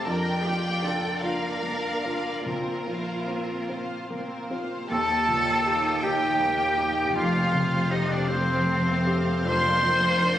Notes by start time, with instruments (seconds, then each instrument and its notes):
0.06 grand piano F2, viola section D4, violin section A#4 D5 G5, cello section A#4
0.43 grand piano F3, viola section A#3 F4, cello section G4, violin section D5 F5
0.82 viola section D4, grand piano D4 F4, cello section A4, violin section A#4 D5
1.22 viola section A#3 F4, grand piano D4 F4, cello section A#4, violin section D5 F5
1.63 grand piano A#3, viola section D4, violin section A#4 D5
2.03 viola section A#3 F4, grand piano D4 F4, violin section D5 F5
2.44 grand piano A#2, viola section A#3 C4, cello section F4, violin section A#4 C5
2.87 grand piano F3, viola section A#3 F4, violin section C5 F5
3.27 viola section A#3 C4, grand piano C4 F4, violin section A#4 C5
3.69 viola section A#3 F4, grand piano C4 F4, violin section C5 F5
4.10 viola section A#3 C4, grand piano A#3, violin section A#4 C5
4.50 viola section A#3 F4, grand piano C4 F4, violin section C5 F5
4.89 grand piano D#2, double bass section D#2, cello section D#2, french horn section A#2 G4, viola section A#3 G4, oboe A4, cello A4, violin section D#5 G5 A5, flute A5
5.28 grand piano A#2
5.66 grand piano D#4 G4
6.03 grand piano D#4 G4, oboe G4, cello G4, violin section G5, flute G5
6.40 grand piano A#3
6.77 grand piano D#4 G4
7.15 double bass section F1, grand piano F2, cello section F2, viola section A3, oboe F4, cello F4, violin section C5 F5, flute F5
7.52 grand piano C3
7.90 grand piano C4 G4, oboe D#4, cello D#4, flute D#5, violin section D#5
8.09 oboe D4, cello D4, flute D5, violin section D5
8.26 french horn section A3, cello C4, oboe C4, grand piano C4 G4, flute C5, violin section C5
8.66 grand piano A3
9.06 grand piano C4 G4
9.45 grand piano F2, french horn section A#3 D4, viola section A#3 A#4, oboe C5, cello C5, violin section D5 C6, flute C6
9.83 grand piano F3
10.20 grand piano D4 A#4